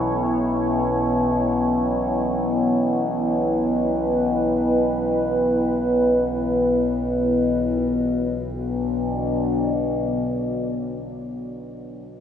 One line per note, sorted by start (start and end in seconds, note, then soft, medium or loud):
0.00 7.79 B1 medium
0.00 7.79 B2 medium
0.00 7.79 B3 medium
0.00 7.79 E4 medium
0.00 2.31 A4 medium
0.00 7.80 C#5 medium
2.00 7.80 B4 medium
7.80 10.95 B1 medium
7.80 10.95 B2 medium
7.80 10.96 B3 medium
7.96 11.11 D4 medium
8.12 11.26 F#4 medium
8.25 11.40 D5 medium